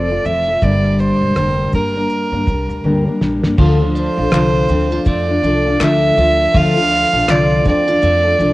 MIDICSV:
0, 0, Header, 1, 6, 480
1, 0, Start_track
1, 0, Key_signature, -1, "minor"
1, 0, Tempo, 739827
1, 406, Time_signature, 4, 2, 24, 8
1, 5536, End_track
2, 0, Start_track
2, 0, Title_t, "Violin"
2, 0, Program_c, 0, 40
2, 0, Note_on_c, 0, 74, 80
2, 163, Note_on_c, 0, 76, 86
2, 173, Note_off_c, 0, 74, 0
2, 410, Note_on_c, 0, 74, 90
2, 419, Note_off_c, 0, 76, 0
2, 646, Note_on_c, 0, 72, 90
2, 656, Note_off_c, 0, 74, 0
2, 1126, Note_off_c, 0, 72, 0
2, 1133, Note_on_c, 0, 70, 85
2, 2064, Note_off_c, 0, 70, 0
2, 2586, Note_on_c, 0, 72, 93
2, 3270, Note_off_c, 0, 72, 0
2, 3304, Note_on_c, 0, 74, 92
2, 3784, Note_on_c, 0, 76, 94
2, 3793, Note_off_c, 0, 74, 0
2, 4263, Note_on_c, 0, 77, 114
2, 4272, Note_off_c, 0, 76, 0
2, 4739, Note_on_c, 0, 74, 94
2, 4748, Note_off_c, 0, 77, 0
2, 4972, Note_off_c, 0, 74, 0
2, 4982, Note_on_c, 0, 74, 95
2, 5536, Note_off_c, 0, 74, 0
2, 5536, End_track
3, 0, Start_track
3, 0, Title_t, "Steel-string acoustic guitar"
3, 0, Program_c, 1, 25
3, 0, Note_on_c, 1, 53, 72
3, 0, Note_on_c, 1, 60, 74
3, 0, Note_on_c, 1, 65, 71
3, 67, Note_off_c, 1, 53, 0
3, 67, Note_on_c, 1, 69, 44
3, 68, Note_off_c, 1, 65, 0
3, 69, Note_off_c, 1, 60, 0
3, 76, Note_on_c, 1, 65, 42
3, 81, Note_on_c, 1, 60, 38
3, 156, Note_off_c, 1, 60, 0
3, 156, Note_on_c, 1, 53, 54
3, 161, Note_off_c, 1, 65, 0
3, 163, Note_on_c, 1, 60, 52
3, 164, Note_off_c, 1, 69, 0
3, 168, Note_on_c, 1, 65, 58
3, 175, Note_on_c, 1, 69, 58
3, 297, Note_off_c, 1, 69, 0
3, 305, Note_off_c, 1, 53, 0
3, 305, Note_on_c, 1, 69, 42
3, 306, Note_off_c, 1, 65, 0
3, 309, Note_off_c, 1, 60, 0
3, 314, Note_on_c, 1, 65, 43
3, 322, Note_on_c, 1, 60, 38
3, 402, Note_on_c, 1, 43, 65
3, 403, Note_off_c, 1, 69, 0
3, 405, Note_off_c, 1, 60, 0
3, 405, Note_on_c, 1, 50, 71
3, 405, Note_on_c, 1, 55, 76
3, 408, Note_off_c, 1, 65, 0
3, 408, Note_on_c, 1, 58, 71
3, 411, Note_on_c, 1, 62, 71
3, 413, Note_on_c, 1, 70, 73
3, 876, Note_off_c, 1, 43, 0
3, 881, Note_off_c, 1, 55, 0
3, 883, Note_off_c, 1, 50, 0
3, 883, Note_off_c, 1, 58, 0
3, 884, Note_on_c, 1, 43, 62
3, 885, Note_on_c, 1, 50, 71
3, 887, Note_off_c, 1, 70, 0
3, 888, Note_off_c, 1, 62, 0
3, 888, Note_on_c, 1, 55, 73
3, 891, Note_on_c, 1, 58, 67
3, 891, Note_on_c, 1, 62, 68
3, 894, Note_on_c, 1, 70, 71
3, 1117, Note_off_c, 1, 55, 0
3, 1124, Note_off_c, 1, 58, 0
3, 1125, Note_off_c, 1, 43, 0
3, 1125, Note_on_c, 1, 55, 51
3, 1126, Note_off_c, 1, 50, 0
3, 1128, Note_off_c, 1, 62, 0
3, 1130, Note_off_c, 1, 70, 0
3, 1132, Note_on_c, 1, 58, 52
3, 1137, Note_on_c, 1, 62, 56
3, 1141, Note_on_c, 1, 70, 61
3, 1264, Note_off_c, 1, 70, 0
3, 1269, Note_off_c, 1, 55, 0
3, 1270, Note_off_c, 1, 62, 0
3, 1272, Note_on_c, 1, 70, 48
3, 1273, Note_off_c, 1, 58, 0
3, 1277, Note_on_c, 1, 62, 44
3, 1282, Note_on_c, 1, 58, 44
3, 1287, Note_on_c, 1, 55, 38
3, 1499, Note_off_c, 1, 70, 0
3, 1507, Note_off_c, 1, 62, 0
3, 1507, Note_on_c, 1, 70, 45
3, 1511, Note_off_c, 1, 58, 0
3, 1514, Note_on_c, 1, 62, 42
3, 1516, Note_off_c, 1, 55, 0
3, 1519, Note_on_c, 1, 58, 41
3, 1524, Note_on_c, 1, 55, 39
3, 1599, Note_off_c, 1, 55, 0
3, 1605, Note_off_c, 1, 70, 0
3, 1607, Note_off_c, 1, 58, 0
3, 1607, Note_on_c, 1, 55, 49
3, 1608, Note_off_c, 1, 62, 0
3, 1615, Note_on_c, 1, 58, 52
3, 1619, Note_on_c, 1, 62, 53
3, 1623, Note_on_c, 1, 70, 57
3, 1843, Note_off_c, 1, 55, 0
3, 1845, Note_off_c, 1, 58, 0
3, 1845, Note_on_c, 1, 43, 72
3, 1847, Note_off_c, 1, 62, 0
3, 1848, Note_on_c, 1, 50, 76
3, 1849, Note_off_c, 1, 70, 0
3, 1850, Note_on_c, 1, 55, 82
3, 1853, Note_on_c, 1, 58, 83
3, 1855, Note_on_c, 1, 62, 82
3, 1857, Note_on_c, 1, 70, 86
3, 1980, Note_off_c, 1, 70, 0
3, 1988, Note_off_c, 1, 62, 0
3, 1988, Note_on_c, 1, 70, 50
3, 1990, Note_off_c, 1, 43, 0
3, 1991, Note_off_c, 1, 50, 0
3, 1992, Note_off_c, 1, 55, 0
3, 1994, Note_off_c, 1, 58, 0
3, 1996, Note_on_c, 1, 62, 49
3, 2001, Note_on_c, 1, 58, 40
3, 2004, Note_on_c, 1, 55, 40
3, 2074, Note_off_c, 1, 55, 0
3, 2079, Note_off_c, 1, 58, 0
3, 2081, Note_on_c, 1, 55, 54
3, 2085, Note_off_c, 1, 62, 0
3, 2085, Note_off_c, 1, 70, 0
3, 2087, Note_on_c, 1, 58, 60
3, 2093, Note_on_c, 1, 62, 67
3, 2097, Note_on_c, 1, 70, 59
3, 2217, Note_off_c, 1, 70, 0
3, 2222, Note_off_c, 1, 62, 0
3, 2224, Note_on_c, 1, 70, 52
3, 2228, Note_off_c, 1, 55, 0
3, 2228, Note_off_c, 1, 58, 0
3, 2230, Note_on_c, 1, 62, 47
3, 2236, Note_on_c, 1, 58, 42
3, 2241, Note_on_c, 1, 55, 43
3, 2319, Note_off_c, 1, 62, 0
3, 2320, Note_on_c, 1, 50, 86
3, 2322, Note_off_c, 1, 55, 0
3, 2323, Note_off_c, 1, 70, 0
3, 2325, Note_off_c, 1, 58, 0
3, 2325, Note_on_c, 1, 53, 91
3, 2327, Note_on_c, 1, 62, 88
3, 2329, Note_on_c, 1, 65, 90
3, 2332, Note_on_c, 1, 69, 96
3, 2457, Note_off_c, 1, 69, 0
3, 2464, Note_on_c, 1, 69, 56
3, 2466, Note_off_c, 1, 65, 0
3, 2467, Note_off_c, 1, 50, 0
3, 2469, Note_off_c, 1, 53, 0
3, 2471, Note_off_c, 1, 62, 0
3, 2474, Note_on_c, 1, 65, 42
3, 2482, Note_on_c, 1, 62, 43
3, 2699, Note_off_c, 1, 69, 0
3, 2707, Note_on_c, 1, 69, 53
3, 2709, Note_off_c, 1, 65, 0
3, 2714, Note_off_c, 1, 62, 0
3, 2717, Note_on_c, 1, 65, 49
3, 2722, Note_on_c, 1, 62, 40
3, 2800, Note_off_c, 1, 62, 0
3, 2802, Note_on_c, 1, 50, 69
3, 2803, Note_off_c, 1, 65, 0
3, 2805, Note_off_c, 1, 69, 0
3, 2806, Note_on_c, 1, 53, 74
3, 2807, Note_on_c, 1, 62, 79
3, 2811, Note_on_c, 1, 65, 77
3, 2814, Note_on_c, 1, 69, 85
3, 3035, Note_off_c, 1, 53, 0
3, 3042, Note_off_c, 1, 62, 0
3, 3043, Note_on_c, 1, 53, 61
3, 3044, Note_off_c, 1, 50, 0
3, 3049, Note_off_c, 1, 65, 0
3, 3050, Note_off_c, 1, 69, 0
3, 3050, Note_on_c, 1, 62, 61
3, 3055, Note_on_c, 1, 65, 64
3, 3060, Note_on_c, 1, 69, 70
3, 3177, Note_off_c, 1, 69, 0
3, 3185, Note_on_c, 1, 69, 49
3, 3186, Note_off_c, 1, 65, 0
3, 3188, Note_off_c, 1, 53, 0
3, 3192, Note_off_c, 1, 62, 0
3, 3194, Note_on_c, 1, 65, 50
3, 3202, Note_on_c, 1, 62, 43
3, 3417, Note_off_c, 1, 69, 0
3, 3425, Note_on_c, 1, 69, 49
3, 3426, Note_off_c, 1, 65, 0
3, 3434, Note_off_c, 1, 62, 0
3, 3434, Note_on_c, 1, 65, 46
3, 3442, Note_on_c, 1, 62, 46
3, 3523, Note_off_c, 1, 62, 0
3, 3524, Note_off_c, 1, 69, 0
3, 3524, Note_on_c, 1, 53, 54
3, 3528, Note_off_c, 1, 65, 0
3, 3531, Note_on_c, 1, 62, 61
3, 3535, Note_on_c, 1, 65, 61
3, 3540, Note_on_c, 1, 69, 67
3, 3660, Note_off_c, 1, 69, 0
3, 3668, Note_on_c, 1, 69, 58
3, 3669, Note_off_c, 1, 53, 0
3, 3669, Note_off_c, 1, 65, 0
3, 3672, Note_off_c, 1, 62, 0
3, 3677, Note_on_c, 1, 65, 52
3, 3686, Note_on_c, 1, 62, 46
3, 3759, Note_off_c, 1, 62, 0
3, 3762, Note_on_c, 1, 50, 77
3, 3763, Note_off_c, 1, 65, 0
3, 3765, Note_off_c, 1, 69, 0
3, 3765, Note_on_c, 1, 53, 80
3, 3767, Note_on_c, 1, 62, 82
3, 3771, Note_on_c, 1, 65, 84
3, 3773, Note_on_c, 1, 69, 81
3, 3994, Note_off_c, 1, 53, 0
3, 4000, Note_off_c, 1, 62, 0
3, 4002, Note_on_c, 1, 53, 59
3, 4004, Note_off_c, 1, 50, 0
3, 4008, Note_off_c, 1, 65, 0
3, 4008, Note_on_c, 1, 62, 66
3, 4009, Note_off_c, 1, 69, 0
3, 4015, Note_on_c, 1, 65, 65
3, 4018, Note_on_c, 1, 69, 69
3, 4237, Note_off_c, 1, 53, 0
3, 4238, Note_off_c, 1, 62, 0
3, 4241, Note_off_c, 1, 65, 0
3, 4241, Note_on_c, 1, 50, 72
3, 4244, Note_off_c, 1, 69, 0
3, 4244, Note_on_c, 1, 53, 80
3, 4246, Note_on_c, 1, 62, 77
3, 4249, Note_on_c, 1, 65, 77
3, 4252, Note_on_c, 1, 69, 85
3, 4378, Note_off_c, 1, 69, 0
3, 4385, Note_on_c, 1, 69, 53
3, 4387, Note_off_c, 1, 50, 0
3, 4387, Note_off_c, 1, 65, 0
3, 4389, Note_off_c, 1, 53, 0
3, 4390, Note_off_c, 1, 62, 0
3, 4395, Note_on_c, 1, 65, 48
3, 4404, Note_on_c, 1, 62, 44
3, 4616, Note_off_c, 1, 69, 0
3, 4624, Note_on_c, 1, 69, 57
3, 4625, Note_off_c, 1, 65, 0
3, 4633, Note_off_c, 1, 62, 0
3, 4633, Note_on_c, 1, 65, 47
3, 4641, Note_on_c, 1, 62, 42
3, 4720, Note_off_c, 1, 62, 0
3, 4723, Note_off_c, 1, 69, 0
3, 4723, Note_on_c, 1, 50, 76
3, 4724, Note_off_c, 1, 65, 0
3, 4726, Note_on_c, 1, 53, 79
3, 4728, Note_on_c, 1, 62, 79
3, 4732, Note_on_c, 1, 65, 87
3, 4735, Note_on_c, 1, 69, 83
3, 4953, Note_off_c, 1, 53, 0
3, 4959, Note_off_c, 1, 62, 0
3, 4960, Note_on_c, 1, 53, 65
3, 4963, Note_off_c, 1, 65, 0
3, 4964, Note_off_c, 1, 50, 0
3, 4966, Note_on_c, 1, 62, 67
3, 4968, Note_off_c, 1, 69, 0
3, 4971, Note_on_c, 1, 65, 64
3, 4976, Note_on_c, 1, 69, 67
3, 5098, Note_off_c, 1, 69, 0
3, 5106, Note_on_c, 1, 69, 52
3, 5107, Note_off_c, 1, 53, 0
3, 5107, Note_off_c, 1, 65, 0
3, 5110, Note_off_c, 1, 62, 0
3, 5115, Note_on_c, 1, 65, 54
3, 5122, Note_on_c, 1, 62, 46
3, 5338, Note_off_c, 1, 69, 0
3, 5345, Note_on_c, 1, 69, 56
3, 5348, Note_off_c, 1, 65, 0
3, 5354, Note_off_c, 1, 62, 0
3, 5356, Note_on_c, 1, 65, 50
3, 5362, Note_on_c, 1, 62, 41
3, 5439, Note_off_c, 1, 62, 0
3, 5439, Note_on_c, 1, 53, 61
3, 5443, Note_off_c, 1, 65, 0
3, 5443, Note_off_c, 1, 69, 0
3, 5447, Note_on_c, 1, 62, 63
3, 5451, Note_on_c, 1, 65, 66
3, 5457, Note_on_c, 1, 69, 69
3, 5536, Note_off_c, 1, 53, 0
3, 5536, Note_off_c, 1, 62, 0
3, 5536, Note_off_c, 1, 65, 0
3, 5536, Note_off_c, 1, 69, 0
3, 5536, End_track
4, 0, Start_track
4, 0, Title_t, "Clean electric guitar"
4, 0, Program_c, 2, 27
4, 2566, Note_on_c, 2, 62, 58
4, 3044, Note_off_c, 2, 62, 0
4, 3047, Note_on_c, 2, 60, 55
4, 3193, Note_off_c, 2, 60, 0
4, 3290, Note_on_c, 2, 57, 58
4, 3766, Note_off_c, 2, 57, 0
4, 3769, Note_on_c, 2, 57, 62
4, 4488, Note_on_c, 2, 62, 55
4, 4964, Note_off_c, 2, 62, 0
4, 4967, Note_on_c, 2, 60, 54
4, 5110, Note_off_c, 2, 60, 0
4, 5203, Note_off_c, 2, 57, 0
4, 5206, Note_on_c, 2, 57, 63
4, 5536, Note_off_c, 2, 57, 0
4, 5536, End_track
5, 0, Start_track
5, 0, Title_t, "Upright bass"
5, 0, Program_c, 3, 32
5, 0, Note_on_c, 3, 29, 85
5, 117, Note_off_c, 3, 29, 0
5, 160, Note_on_c, 3, 29, 81
5, 359, Note_off_c, 3, 29, 0
5, 402, Note_on_c, 3, 31, 91
5, 718, Note_off_c, 3, 31, 0
5, 785, Note_on_c, 3, 28, 72
5, 866, Note_off_c, 3, 28, 0
5, 881, Note_on_c, 3, 29, 77
5, 1080, Note_off_c, 3, 29, 0
5, 1124, Note_on_c, 3, 31, 72
5, 1321, Note_off_c, 3, 31, 0
5, 1505, Note_on_c, 3, 43, 77
5, 1586, Note_off_c, 3, 43, 0
5, 1602, Note_on_c, 3, 36, 72
5, 1722, Note_off_c, 3, 36, 0
5, 1745, Note_on_c, 3, 38, 70
5, 1826, Note_off_c, 3, 38, 0
5, 1842, Note_on_c, 3, 38, 81
5, 1962, Note_off_c, 3, 38, 0
5, 2084, Note_on_c, 3, 34, 76
5, 2203, Note_off_c, 3, 34, 0
5, 2229, Note_on_c, 3, 31, 72
5, 2308, Note_off_c, 3, 31, 0
5, 2324, Note_on_c, 3, 38, 100
5, 2640, Note_off_c, 3, 38, 0
5, 2711, Note_on_c, 3, 34, 82
5, 2790, Note_off_c, 3, 34, 0
5, 2803, Note_on_c, 3, 36, 85
5, 3001, Note_off_c, 3, 36, 0
5, 3044, Note_on_c, 3, 38, 83
5, 3242, Note_off_c, 3, 38, 0
5, 3283, Note_on_c, 3, 41, 93
5, 3481, Note_off_c, 3, 41, 0
5, 3524, Note_on_c, 3, 36, 86
5, 3721, Note_off_c, 3, 36, 0
5, 3767, Note_on_c, 3, 38, 88
5, 3963, Note_off_c, 3, 38, 0
5, 4005, Note_on_c, 3, 38, 85
5, 4202, Note_off_c, 3, 38, 0
5, 4245, Note_on_c, 3, 38, 100
5, 4560, Note_off_c, 3, 38, 0
5, 4628, Note_on_c, 3, 34, 81
5, 4707, Note_off_c, 3, 34, 0
5, 4724, Note_on_c, 3, 36, 88
5, 4921, Note_off_c, 3, 36, 0
5, 4967, Note_on_c, 3, 38, 83
5, 5163, Note_off_c, 3, 38, 0
5, 5207, Note_on_c, 3, 41, 89
5, 5403, Note_off_c, 3, 41, 0
5, 5446, Note_on_c, 3, 36, 82
5, 5536, Note_off_c, 3, 36, 0
5, 5536, End_track
6, 0, Start_track
6, 0, Title_t, "Drums"
6, 164, Note_on_c, 9, 82, 46
6, 229, Note_off_c, 9, 82, 0
6, 403, Note_on_c, 9, 36, 100
6, 403, Note_on_c, 9, 82, 69
6, 468, Note_off_c, 9, 36, 0
6, 468, Note_off_c, 9, 82, 0
6, 547, Note_on_c, 9, 37, 31
6, 611, Note_off_c, 9, 37, 0
6, 646, Note_on_c, 9, 82, 43
6, 711, Note_off_c, 9, 82, 0
6, 880, Note_on_c, 9, 82, 61
6, 883, Note_on_c, 9, 37, 95
6, 945, Note_off_c, 9, 82, 0
6, 948, Note_off_c, 9, 37, 0
6, 1120, Note_on_c, 9, 82, 47
6, 1125, Note_on_c, 9, 36, 71
6, 1184, Note_off_c, 9, 82, 0
6, 1190, Note_off_c, 9, 36, 0
6, 1359, Note_on_c, 9, 82, 60
6, 1424, Note_off_c, 9, 82, 0
6, 1604, Note_on_c, 9, 36, 82
6, 1605, Note_on_c, 9, 82, 44
6, 1668, Note_off_c, 9, 36, 0
6, 1670, Note_off_c, 9, 82, 0
6, 1751, Note_on_c, 9, 82, 50
6, 1816, Note_off_c, 9, 82, 0
6, 2084, Note_on_c, 9, 38, 71
6, 2149, Note_off_c, 9, 38, 0
6, 2229, Note_on_c, 9, 38, 71
6, 2294, Note_off_c, 9, 38, 0
6, 2323, Note_on_c, 9, 49, 94
6, 2325, Note_on_c, 9, 36, 115
6, 2388, Note_off_c, 9, 49, 0
6, 2390, Note_off_c, 9, 36, 0
6, 2569, Note_on_c, 9, 82, 47
6, 2634, Note_off_c, 9, 82, 0
6, 2800, Note_on_c, 9, 82, 74
6, 2803, Note_on_c, 9, 37, 110
6, 2813, Note_on_c, 9, 39, 79
6, 2865, Note_off_c, 9, 82, 0
6, 2868, Note_off_c, 9, 37, 0
6, 2878, Note_off_c, 9, 39, 0
6, 3040, Note_on_c, 9, 82, 54
6, 3105, Note_off_c, 9, 82, 0
6, 3188, Note_on_c, 9, 82, 51
6, 3253, Note_off_c, 9, 82, 0
6, 3281, Note_on_c, 9, 82, 73
6, 3284, Note_on_c, 9, 36, 90
6, 3346, Note_off_c, 9, 82, 0
6, 3349, Note_off_c, 9, 36, 0
6, 3526, Note_on_c, 9, 82, 48
6, 3591, Note_off_c, 9, 82, 0
6, 3764, Note_on_c, 9, 37, 102
6, 3768, Note_on_c, 9, 39, 85
6, 3769, Note_on_c, 9, 82, 78
6, 3829, Note_off_c, 9, 37, 0
6, 3833, Note_off_c, 9, 39, 0
6, 3834, Note_off_c, 9, 82, 0
6, 4007, Note_on_c, 9, 82, 51
6, 4072, Note_off_c, 9, 82, 0
6, 4246, Note_on_c, 9, 36, 116
6, 4246, Note_on_c, 9, 82, 74
6, 4311, Note_off_c, 9, 36, 0
6, 4311, Note_off_c, 9, 82, 0
6, 4491, Note_on_c, 9, 82, 48
6, 4556, Note_off_c, 9, 82, 0
6, 4631, Note_on_c, 9, 82, 57
6, 4696, Note_off_c, 9, 82, 0
6, 4722, Note_on_c, 9, 82, 71
6, 4725, Note_on_c, 9, 37, 118
6, 4731, Note_on_c, 9, 39, 79
6, 4787, Note_off_c, 9, 82, 0
6, 4790, Note_off_c, 9, 37, 0
6, 4796, Note_off_c, 9, 39, 0
6, 4962, Note_on_c, 9, 82, 58
6, 4967, Note_on_c, 9, 36, 86
6, 5027, Note_off_c, 9, 82, 0
6, 5032, Note_off_c, 9, 36, 0
6, 5110, Note_on_c, 9, 82, 50
6, 5175, Note_off_c, 9, 82, 0
6, 5204, Note_on_c, 9, 82, 71
6, 5268, Note_off_c, 9, 82, 0
6, 5448, Note_on_c, 9, 82, 52
6, 5513, Note_off_c, 9, 82, 0
6, 5536, End_track
0, 0, End_of_file